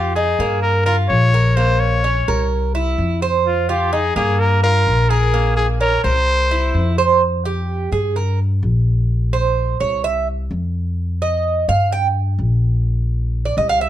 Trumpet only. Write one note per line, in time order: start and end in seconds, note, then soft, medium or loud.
0.00 0.15 G4 medium
0.15 0.59 G#4 medium
0.62 0.84 A#4 medium
0.86 0.96 A#4 medium
1.09 1.57 C#5 loud
1.56 1.81 C5 loud
1.80 2.51 C#5 medium
3.47 3.71 F4 medium
3.69 3.94 G4 medium
3.93 4.15 G#4 medium
4.16 4.41 G#4 medium
4.39 4.63 A#4 medium
4.63 5.11 A#4 loud
5.10 5.56 G#4 loud
5.57 5.67 G#4 medium
5.81 6.03 A#4 loud
6.04 6.94 C5 loud